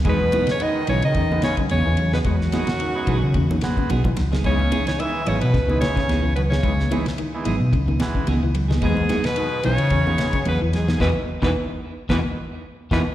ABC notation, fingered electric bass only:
X:1
M:4/4
L:1/16
Q:"Swing 16ths" 1/4=110
K:E
V:1 name="Fingered electric bass" clef=bass
E,,2 z4 B,,, C, E,,2 z2 E,, E,,3 | E,,2 z4 B,,, C, E,,2 z2 B,,,2 C,,2 | C,,2 z4 G,,, B,, C,,2 z2 C,, C,,3 | C,,2 z4 G,,, B,, C,,2 z2 C,, C,,3 |
E,,2 z4 B,,, C, E,,2 z2 E,, E,,3 | E,, z2 E,, z4 E,, z4 z E,, z |]